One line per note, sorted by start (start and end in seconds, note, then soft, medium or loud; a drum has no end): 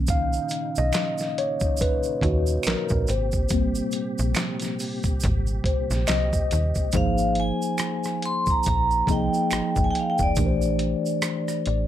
0.00 0.39 B1 medium
0.00 0.90 D#3 medium
0.00 0.91 A#3 medium
0.00 0.91 C#4 medium
0.07 6.90 A#2 medium
0.07 3.06 C#3 medium
0.07 3.06 D#4 medium
0.07 0.73 F5 loud
0.07 kick loud
0.07 closed hi-hat medium
0.07 shaker medium
0.33 shaker soft
0.49 closed hi-hat medium
0.49 shaker soft
0.76 0.92 B1 medium
0.76 1.40 D#5 loud
0.76 shaker medium
0.93 finger snap medium
0.93 snare loud
0.93 clap medium
0.93 closed hi-hat medium
0.93 shaker medium
1.18 snare soft
1.18 shaker soft
1.38 1.78 C#5 medium
1.38 closed hi-hat soft
1.60 kick medium
1.60 shaker soft
1.77 shaker medium
1.81 2.20 B4 medium
1.81 kick loud
1.81 closed hi-hat medium
2.03 shaker soft
2.21 2.59 D#2 loud
2.21 2.68 F#4 medium
2.21 kick medium
2.21 closed hi-hat medium
2.47 shaker medium
2.63 2.76 A#1 soft
2.63 3.10 A#4 loud
2.63 finger snap medium
2.63 closed hi-hat medium
2.63 shaker medium
2.68 snare loud
2.68 clap medium
2.89 3.06 A#1 medium
2.89 kick medium
2.89 shaker soft
3.07 3.81 G#1 medium
3.07 6.91 C3 medium
3.07 6.90 G4 medium
3.07 3.49 C5 medium
3.07 closed hi-hat medium
3.07 shaker medium
3.32 kick medium
3.32 shaker soft
3.49 4.11 G3 medium
3.49 4.12 A#3 medium
3.49 4.12 C4 medium
3.49 kick loud
3.49 closed hi-hat medium
3.49 shaker medium
3.75 shaker medium
3.91 closed hi-hat medium
3.91 shaker soft
4.18 4.34 A#1 medium
4.18 shaker soft
4.35 finger snap medium
4.35 snare loud
4.35 clap loud
4.35 closed hi-hat medium
4.35 shaker medium
4.60 snare soft
4.60 closed hi-hat soft
4.60 shaker soft
4.79 open hi-hat soft
4.79 shaker soft
5.03 kick medium
5.03 closed hi-hat soft
5.03 shaker soft
5.20 kick loud
5.20 closed hi-hat medium
5.20 shaker medium
5.24 5.60 G#1 loud
5.47 shaker soft
5.64 5.75 A#1 soft
5.64 6.10 C5 medium
5.64 kick medium
5.64 closed hi-hat medium
5.91 6.06 A#1 medium
5.91 snare soft
5.91 shaker medium
6.07 6.45 C2 medium
6.07 6.48 D#5 loud
6.07 finger snap medium
6.07 snare loud
6.07 clap loud
6.07 closed hi-hat medium
6.07 shaker medium
6.33 kick loud
6.33 shaker soft
6.51 6.73 D#2 medium
6.51 closed hi-hat medium
6.51 shaker medium
6.75 kick medium
6.75 shaker soft
6.92 7.52 G#1 loud
6.92 8.32 F3 medium
6.92 8.32 A#3 medium
6.92 8.32 D#4 medium
6.92 8.32 G#4 medium
6.92 8.33 C5 medium
6.92 kick loud
6.92 closed hi-hat medium
6.92 shaker medium
6.97 7.39 F5 medium
7.18 shaker soft
7.35 closed hi-hat medium
7.40 8.27 G#5 medium
7.62 shaker medium
7.78 finger snap medium
7.78 cross-stick loud
7.78 closed hi-hat medium
7.78 shaker medium
8.04 cross-stick soft
8.04 shaker soft
8.22 8.50 C6 loud
8.22 closed hi-hat medium
8.46 kick medium
8.46 shaker soft
8.50 8.67 A#5 medium
8.63 kick medium
8.63 closed hi-hat medium
8.63 shaker medium
8.67 9.03 A#1 medium
8.67 9.11 A#5 loud
8.91 shaker soft
9.07 9.29 C2 medium
9.07 10.14 F3 medium
9.07 10.14 A#3 medium
9.07 10.14 D#4 medium
9.07 10.15 G#4 medium
9.07 10.15 D#5 medium
9.07 kick medium
9.07 closed hi-hat medium
9.07 shaker soft
9.12 9.86 G5 medium
9.34 shaker soft
9.51 9.62 G#1 soft
9.51 finger snap medium
9.51 cross-stick loud
9.51 closed hi-hat medium
9.51 shaker medium
9.76 9.92 G#1 medium
9.76 kick medium
9.76 shaker soft
9.84 9.91 G#5 medium
9.91 9.99 G5 medium
9.95 closed hi-hat medium
9.99 10.09 F5 medium
10.10 10.20 G5 medium
10.18 10.35 F1 medium
10.18 kick medium
10.18 shaker soft
10.23 11.87 D5 medium
10.36 10.95 A#1 medium
10.36 11.75 E3 medium
10.36 11.75 A3 medium
10.36 11.76 D4 medium
10.36 11.76 G4 medium
10.36 10.46 A#4 medium
10.36 kick loud
10.36 closed hi-hat medium
10.36 shaker medium
10.46 11.80 C5 medium
10.62 shaker soft
10.79 closed hi-hat medium
11.06 shaker soft
11.22 finger snap medium
11.22 cross-stick medium
11.22 closed hi-hat medium
11.22 shaker medium
11.48 cross-stick soft
11.48 shaker soft
11.66 11.87 A1 medium
11.66 11.87 D5 medium
11.66 closed hi-hat medium